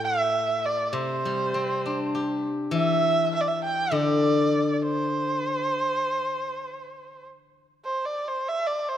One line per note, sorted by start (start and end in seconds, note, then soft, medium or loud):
0.00 0.92 A2 medium
0.05 0.67 E5 loud
0.66 0.86 D5 medium
0.86 0.96 D5 medium
0.93 2.73 C3 medium
0.93 2.44 C5 medium
1.25 2.44 G3 soft
1.54 2.73 C4 soft
1.86 3.03 D4 soft
2.15 3.33 G4 soft
2.71 4.50 E3 medium
2.76 3.30 E5 loud
3.35 3.42 E5 medium
3.41 3.49 D5 medium
3.47 3.63 E5 medium
3.65 3.96 G5 loud
3.92 5.69 D3 medium
3.92 4.73 D5 medium
4.73 4.84 D5 medium
4.82 7.26 C5 medium
7.85 8.07 C5 medium
8.05 8.29 D5 medium
8.28 8.50 C5 medium
8.48 8.68 E5 medium
8.67 8.90 D5 medium
8.88 8.97 C5 medium